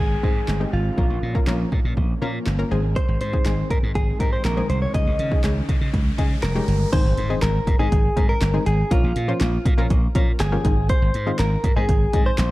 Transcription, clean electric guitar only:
0, 0, Header, 1, 2, 480
1, 0, Start_track
1, 0, Key_signature, -4, "major"
1, 0, Tempo, 495868
1, 947, Time_signature, 4, 2, 24, 8
1, 12111, End_track
2, 0, Start_track
2, 0, Title_t, "Clean electric guitar"
2, 0, Program_c, 0, 27
2, 0, Note_on_c, 0, 68, 104
2, 669, Note_off_c, 0, 68, 0
2, 710, Note_on_c, 0, 65, 84
2, 1630, Note_off_c, 0, 65, 0
2, 2868, Note_on_c, 0, 72, 91
2, 3091, Note_off_c, 0, 72, 0
2, 3110, Note_on_c, 0, 72, 92
2, 3585, Note_off_c, 0, 72, 0
2, 3589, Note_on_c, 0, 70, 92
2, 3654, Note_off_c, 0, 70, 0
2, 3827, Note_on_c, 0, 68, 93
2, 4065, Note_off_c, 0, 68, 0
2, 4069, Note_on_c, 0, 70, 85
2, 4184, Note_off_c, 0, 70, 0
2, 4188, Note_on_c, 0, 72, 91
2, 4303, Note_off_c, 0, 72, 0
2, 4307, Note_on_c, 0, 70, 95
2, 4543, Note_off_c, 0, 70, 0
2, 4547, Note_on_c, 0, 72, 100
2, 4662, Note_off_c, 0, 72, 0
2, 4666, Note_on_c, 0, 73, 97
2, 4783, Note_off_c, 0, 73, 0
2, 4787, Note_on_c, 0, 75, 101
2, 5233, Note_off_c, 0, 75, 0
2, 6222, Note_on_c, 0, 70, 95
2, 6701, Note_off_c, 0, 70, 0
2, 6704, Note_on_c, 0, 72, 113
2, 7178, Note_off_c, 0, 72, 0
2, 7182, Note_on_c, 0, 70, 101
2, 7540, Note_off_c, 0, 70, 0
2, 7544, Note_on_c, 0, 68, 96
2, 8022, Note_off_c, 0, 68, 0
2, 8026, Note_on_c, 0, 70, 99
2, 8382, Note_off_c, 0, 70, 0
2, 8386, Note_on_c, 0, 68, 95
2, 8627, Note_on_c, 0, 65, 88
2, 8634, Note_off_c, 0, 68, 0
2, 9548, Note_off_c, 0, 65, 0
2, 10070, Note_on_c, 0, 68, 93
2, 10544, Note_off_c, 0, 68, 0
2, 10548, Note_on_c, 0, 72, 114
2, 11026, Note_off_c, 0, 72, 0
2, 11030, Note_on_c, 0, 70, 96
2, 11385, Note_off_c, 0, 70, 0
2, 11389, Note_on_c, 0, 68, 92
2, 11866, Note_off_c, 0, 68, 0
2, 11870, Note_on_c, 0, 72, 105
2, 12111, Note_off_c, 0, 72, 0
2, 12111, End_track
0, 0, End_of_file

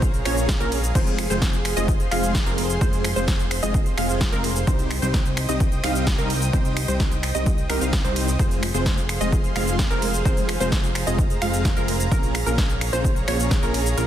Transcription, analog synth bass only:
0, 0, Header, 1, 2, 480
1, 0, Start_track
1, 0, Key_signature, -4, "minor"
1, 0, Tempo, 465116
1, 982, Time_signature, 4, 2, 24, 8
1, 14519, End_track
2, 0, Start_track
2, 0, Title_t, "Analog synth bass"
2, 0, Program_c, 0, 38
2, 0, Note_on_c, 0, 34, 99
2, 239, Note_off_c, 0, 34, 0
2, 262, Note_on_c, 0, 34, 94
2, 599, Note_off_c, 0, 34, 0
2, 623, Note_on_c, 0, 34, 96
2, 959, Note_off_c, 0, 34, 0
2, 983, Note_on_c, 0, 29, 100
2, 1319, Note_off_c, 0, 29, 0
2, 1343, Note_on_c, 0, 29, 99
2, 1799, Note_off_c, 0, 29, 0
2, 1823, Note_on_c, 0, 29, 99
2, 2159, Note_off_c, 0, 29, 0
2, 2182, Note_on_c, 0, 29, 101
2, 2519, Note_off_c, 0, 29, 0
2, 2543, Note_on_c, 0, 29, 100
2, 2879, Note_off_c, 0, 29, 0
2, 2903, Note_on_c, 0, 29, 97
2, 3239, Note_off_c, 0, 29, 0
2, 3263, Note_on_c, 0, 29, 102
2, 3719, Note_off_c, 0, 29, 0
2, 3743, Note_on_c, 0, 29, 92
2, 4079, Note_off_c, 0, 29, 0
2, 4103, Note_on_c, 0, 29, 97
2, 4439, Note_off_c, 0, 29, 0
2, 4463, Note_on_c, 0, 29, 94
2, 4799, Note_off_c, 0, 29, 0
2, 4823, Note_on_c, 0, 36, 99
2, 5159, Note_off_c, 0, 36, 0
2, 5183, Note_on_c, 0, 36, 102
2, 5639, Note_off_c, 0, 36, 0
2, 5663, Note_on_c, 0, 36, 97
2, 5999, Note_off_c, 0, 36, 0
2, 6023, Note_on_c, 0, 36, 96
2, 6359, Note_off_c, 0, 36, 0
2, 6383, Note_on_c, 0, 36, 99
2, 6719, Note_off_c, 0, 36, 0
2, 6743, Note_on_c, 0, 36, 97
2, 7079, Note_off_c, 0, 36, 0
2, 7102, Note_on_c, 0, 36, 101
2, 7559, Note_off_c, 0, 36, 0
2, 7583, Note_on_c, 0, 36, 96
2, 7919, Note_off_c, 0, 36, 0
2, 7942, Note_on_c, 0, 36, 101
2, 8039, Note_off_c, 0, 36, 0
2, 8063, Note_on_c, 0, 36, 97
2, 8279, Note_off_c, 0, 36, 0
2, 8302, Note_on_c, 0, 36, 94
2, 8639, Note_off_c, 0, 36, 0
2, 8662, Note_on_c, 0, 29, 101
2, 8999, Note_off_c, 0, 29, 0
2, 9023, Note_on_c, 0, 29, 98
2, 9479, Note_off_c, 0, 29, 0
2, 9502, Note_on_c, 0, 29, 97
2, 9838, Note_off_c, 0, 29, 0
2, 9862, Note_on_c, 0, 29, 102
2, 10198, Note_off_c, 0, 29, 0
2, 10222, Note_on_c, 0, 29, 96
2, 10558, Note_off_c, 0, 29, 0
2, 10582, Note_on_c, 0, 29, 95
2, 10919, Note_off_c, 0, 29, 0
2, 10942, Note_on_c, 0, 29, 99
2, 11398, Note_off_c, 0, 29, 0
2, 11423, Note_on_c, 0, 29, 100
2, 11759, Note_off_c, 0, 29, 0
2, 11783, Note_on_c, 0, 29, 101
2, 12119, Note_off_c, 0, 29, 0
2, 12143, Note_on_c, 0, 29, 95
2, 12479, Note_off_c, 0, 29, 0
2, 12503, Note_on_c, 0, 34, 93
2, 12839, Note_off_c, 0, 34, 0
2, 12862, Note_on_c, 0, 34, 96
2, 13319, Note_off_c, 0, 34, 0
2, 13342, Note_on_c, 0, 34, 96
2, 13678, Note_off_c, 0, 34, 0
2, 13703, Note_on_c, 0, 34, 96
2, 14039, Note_off_c, 0, 34, 0
2, 14062, Note_on_c, 0, 34, 94
2, 14399, Note_off_c, 0, 34, 0
2, 14422, Note_on_c, 0, 34, 100
2, 14519, Note_off_c, 0, 34, 0
2, 14519, End_track
0, 0, End_of_file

